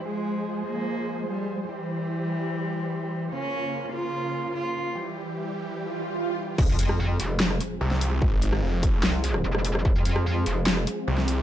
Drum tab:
CC |----------------|----------------|----------------|----------------|
HH |----------------|----------------|----------------|----------------|
CP |----------------|----------------|----------------|----------------|
SD |----------------|----------------|----------------|----------------|
BD |----------------|----------------|----------------|----------------|

CC |x---------------|----------------|----------------|
HH |--x---x---x---x-|--x---x---x---x-|--x---x---x---x-|
CP |--------x-------|--------x-------|--------x-------|
SD |---r----or---o--|---r----o--r-r-r|---r----or---o--|
BD |o---------------|o-----o---------|o---------------|